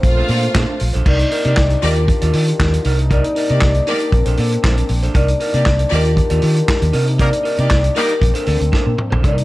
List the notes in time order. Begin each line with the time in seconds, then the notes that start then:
Already playing: A#3 C4
0.03 A#1 A3 F4 C5 F5, muted clean electric guitar stroke, kick, closed hi-hat
0.17 D4 A4 C5
0.28 A#2 D4 A4 D5, open hi-hat
0.43 muted clean electric guitar stroke, closed hi-hat
0.54 A#2 D4 A4 C5, kick, snare, clap, closed hi-hat
0.68 muted clean electric guitar stroke
0.80 A#1, muted clean electric guitar stroke, open hi-hat
0.93 A#1 D4 A4 C5, closed hi-hat
1.05 C2 C3 A#3 D4 D#4 A#4 D5, kick, crash
1.19 muted clean electric guitar stroke, closed hi-hat
1.31 D#4 A#4 D5, open hi-hat
1.45 C3 A#3 D#4 G4 A#4 D5, closed hi-hat
1.57 C2, kick, snare, clap
1.70 muted clean electric guitar stroke, closed hi-hat
1.82 D#2 D#3 A#3 F4 G4 A#4 D5 D#5, open hi-hat
1.96 muted clean electric guitar stroke, closed hi-hat
2.08 muted clean electric guitar stroke, kick, closed hi-hat
2.22 D#2 F4 G4 D5, closed hi-hat
2.33 D#3 F4 G4 D5, open hi-hat
2.47 muted clean electric guitar stroke, closed hi-hat
2.60 D#2, kick, snare, clap
2.73 muted clean electric guitar stroke, closed hi-hat
2.84 C2 C3 A#3 D4 D#4 A#4 D5, open hi-hat
2.98 muted clean electric guitar stroke, closed hi-hat
3.10 D#4 A#4 D5, kick, closed hi-hat
3.24 muted clean electric guitar stroke, closed hi-hat
3.35 D#4 A#4 D5, open hi-hat
3.49 C3 A#3 D#4 G4 A#4 D5 D#5, closed hi-hat
3.61 C2, kick, snare, clap
3.74 muted clean electric guitar stroke, closed hi-hat
3.87 A#3 D#4 G4 A#4 D5, open hi-hat
4.00 muted clean electric guitar stroke, closed hi-hat
4.12 A#1 C4, muted clean electric guitar stroke, kick, closed hi-hat
4.26 A#1 D4 A4 C5, closed hi-hat
4.37 A#2 D4 A4 D5, open hi-hat
4.51 muted clean electric guitar stroke, closed hi-hat
4.63 A#1 D4 A4 C5, kick, snare, clap
4.77 muted clean electric guitar stroke, closed hi-hat
4.89 A#1, muted clean electric guitar stroke, open hi-hat
5.03 D4 A4 C5, closed hi-hat
5.14 C2 C3 D#4 A#4 D5, kick, closed hi-hat
5.28 muted clean electric guitar stroke, closed hi-hat
5.40 D#4 A#4 D5, open hi-hat
5.54 C3 A#3 D#4 G4 A#4 D5, closed hi-hat
5.65 C2, kick, snare, clap
5.79 muted clean electric guitar stroke, closed hi-hat
5.91 D#2 D#3 A#3 F4 G4 A#4 D5 D#5, open hi-hat
6.04 muted clean electric guitar stroke, closed hi-hat
6.16 muted clean electric guitar stroke, kick, closed hi-hat
6.30 D#2 F4 G4 D5, closed hi-hat
6.42 D#3 F4 G4 D5, open hi-hat
6.56 muted clean electric guitar stroke, closed hi-hat
6.68 kick, snare, clap
6.81 D#2, muted clean electric guitar stroke, closed hi-hat
6.93 C3 A#3 D#4 A#4 D5, open hi-hat
7.07 muted clean electric guitar stroke, closed hi-hat
7.18 G3 A#3 D#4 A#4 D5, kick, closed hi-hat
7.33 muted clean electric guitar stroke, closed hi-hat
7.43 D#4 A#4 D5, open hi-hat
7.58 C3 A#3 D#4 G4 A#4 D5 D#5, closed hi-hat
7.70 C2, muted clean electric guitar stroke, kick, snare, clap
7.83 muted clean electric guitar stroke, closed hi-hat
7.95 G3 A#3 D#4 G4 A#4 D5, open hi-hat
8.08 muted clean electric guitar stroke, closed hi-hat
8.21 A#1 C4, muted clean electric guitar stroke, kick, closed hi-hat
8.34 D4 A4 C5, closed hi-hat
8.46 D2 D4 A4 D5, open hi-hat
8.60 D2, muted clean electric guitar stroke, closed hi-hat
8.72 D4 A4 C5, kick, snare
8.86 A#2, muted clean electric guitar stroke
8.98 muted clean electric guitar stroke, mid tom
9.10 A#1 D4 A4 C5, floor tom
9.23 C2 C3 D#4 A#4 D5, kick, closed hi-hat
9.37 muted clean electric guitar stroke, closed hi-hat